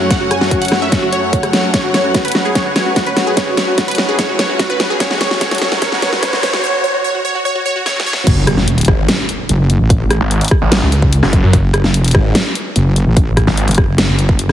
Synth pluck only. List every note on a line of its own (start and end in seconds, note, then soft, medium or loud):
0.10 0.18 F#5 medium
0.21 0.28 F#4 medium
0.31 0.38 G#5 medium
0.41 0.48 F#4 medium
0.51 0.58 F#4 medium
0.62 0.69 F#5 medium
0.72 0.79 F#4 medium
0.82 0.89 E5 medium
0.92 0.99 F#4 medium
1.02 1.09 F#4 medium
1.12 1.66 C#5 medium
1.74 1.81 C#5 medium
1.84 1.91 F#4 medium
1.94 2.01 C#5 medium
2.04 2.12 F#4 medium
2.15 2.22 F#4 medium
2.25 2.32 B4 medium
2.35 2.42 F#4 medium
2.45 2.52 G#4 medium
2.55 2.63 C#5 medium
2.66 2.73 F#4 medium
2.76 2.83 C#5 medium
2.86 2.93 F#4 medium
2.96 3.03 F#4 medium
3.07 3.14 B4 medium
3.17 3.24 F#4 medium
3.27 3.34 G#4 medium
3.37 3.44 C#5 medium
3.47 3.54 F#4 medium
3.57 3.65 C#5 medium
3.68 3.75 F#4 medium
3.78 3.85 F#4 medium
3.88 3.95 B4 medium
3.98 4.05 F#4 medium
4.09 4.16 G#4 medium
4.19 4.26 C#5 medium
4.29 4.36 F#4 medium
4.39 4.46 C#5 medium
4.49 4.56 F#4 medium
4.59 4.67 F#4 medium
4.70 4.77 B4 medium
4.80 4.87 F#4 medium
4.90 4.97 G#4 medium
5.00 5.07 C#5 loud
5.11 5.18 F#4 medium
5.21 5.28 C#5 medium
5.31 5.38 F#4 medium
5.41 5.48 C#5 loud
5.51 5.58 F#4 medium
5.61 5.69 C#5 medium
5.72 5.79 F#4 medium
5.82 5.89 C#5 loud
5.92 5.99 F#4 medium
6.02 6.09 C#5 medium
6.13 6.20 F#4 medium
6.23 6.30 C#5 loud
6.33 6.40 F#4 medium
6.43 6.50 C#5 loud
6.53 6.61 F#4 medium
6.64 6.71 C#5 loud
6.74 6.81 F#4 medium
6.84 6.91 C#5 loud
6.94 7.01 F#4 medium
7.04 7.12 C#5 loud
7.15 7.22 F#4 medium
7.25 7.32 C#5 loud
7.35 7.42 F#4 medium
7.45 7.52 C#5 loud
7.55 7.63 F#4 medium
7.66 7.73 C#5 loud
7.76 7.83 F#4 medium
7.86 7.93 C#5 loud
7.96 8.03 F#4 medium
8.06 8.14 C#5 loud
8.17 8.24 F#4 medium